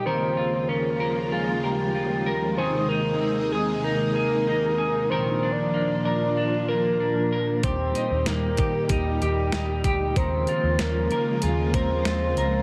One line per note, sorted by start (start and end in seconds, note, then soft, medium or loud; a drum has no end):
0.00 0.68 A#3 soft
0.00 0.12 D#4 medium
0.06 7.60 D#2 medium
0.06 2.56 C#3 medium
0.06 2.58 D#3 medium
0.06 2.56 F3 medium
0.06 5.07 G#3 medium
0.06 2.56 A#3 medium
0.06 2.56 F4 medium
0.06 0.99 A#4 medium
0.06 0.70 C5 medium
0.37 1.31 F4 soft
0.68 2.65 C#4 medium
0.68 1.33 A#4 medium
1.00 1.63 A#4 medium
1.32 1.94 F4 medium
1.32 1.65 G#4 medium
1.64 2.57 G4 medium
1.64 2.25 A#4 medium
1.95 2.65 F4 medium
2.26 2.58 A#4 medium
2.58 5.08 C3 medium
2.58 5.10 D#3 medium
2.58 5.09 D#3 medium
2.58 5.08 D#4 medium
2.58 5.08 G#4 medium
2.58 3.51 G#4 medium
2.58 2.90 C5 medium
2.88 3.83 D#4 medium
2.88 3.53 A#4 loud
3.21 5.17 C4 medium
3.52 3.86 G#4 medium
3.52 4.15 G#4 medium
3.84 4.46 D#4 medium
3.84 4.14 A#4 medium
4.15 4.77 G#4 medium
4.15 5.11 A#4 loud
4.47 5.17 D#4 medium
4.78 5.10 G#4 medium
5.10 10.13 A#2 medium
5.10 8.61 D#3 medium
5.10 7.61 F3 medium
5.10 7.61 D4 medium
5.10 7.61 F4 medium
5.10 6.05 A#4 medium
5.10 5.54 C5 medium
5.43 6.36 D4 medium
5.52 5.95 D5 medium
5.74 8.27 A#3 soft
6.05 6.68 A#4 medium
6.05 6.64 D5 loud
6.37 6.99 D4 medium
6.68 7.59 A#4 loud
6.68 7.32 A#4 medium
7.00 7.70 D4 medium
7.33 7.65 A#4 medium
7.63 7.91 D#2 medium
7.63 10.13 G3 medium
7.63 10.13 D#4 medium
7.63 10.14 G4 medium
7.63 8.59 G4 medium
7.63 8.28 C5 medium
7.63 kick medium
7.63 closed hi-hat medium
7.95 8.90 D#4 medium
7.95 closed hi-hat soft
8.11 8.25 D#2 medium
8.26 8.55 D#2 medium
8.26 10.80 A#3 soft
8.26 8.91 A#4 medium
8.26 snare medium
8.26 closed hi-hat medium
8.57 8.86 D#3 medium
8.57 9.21 G4 medium
8.57 kick medium
8.57 closed hi-hat medium
8.89 9.18 D#2 medium
8.89 9.52 D#4 medium
8.89 9.20 G4 loud
8.89 kick medium
8.89 closed hi-hat medium
9.21 9.49 D#2 medium
9.21 10.18 G4 medium
9.21 9.84 G4 medium
9.21 closed hi-hat soft
9.52 9.81 D#2 medium
9.52 10.23 D#4 medium
9.52 snare loud
9.52 closed hi-hat medium
9.84 10.12 D2 medium
9.84 10.17 G4 medium
9.84 kick medium
9.84 closed hi-hat soft
10.16 10.44 D#2 medium
10.16 12.63 C#3 medium
10.16 12.63 D#3 medium
10.16 12.63 F3 medium
10.16 12.63 G#3 medium
10.16 12.63 A#3 medium
10.16 12.63 F4 medium
10.16 11.11 A#4 soft
10.16 10.82 C5 medium
10.16 kick loud
10.16 closed hi-hat medium
10.47 11.42 F4 medium
10.47 closed hi-hat soft
10.63 10.77 D#2 medium
10.79 12.63 C#4 medium
10.79 11.44 A#4 loud
10.79 snare loud
10.79 closed hi-hat medium
11.11 11.39 D#3 medium
11.11 11.74 A#4 medium
11.11 closed hi-hat soft
11.42 11.71 D#2 medium
11.42 12.05 F4 medium
11.42 11.76 G#4 medium
11.42 closed hi-hat medium
11.74 12.02 D#2 medium
11.74 12.36 A#4 medium
11.74 12.63 C5 loud
11.74 kick medium
11.74 closed hi-hat soft
12.05 12.63 F4 medium
12.05 snare loud
12.05 closed hi-hat medium
12.37 12.63 C#2 medium
12.37 12.63 A#4 medium
12.37 closed hi-hat soft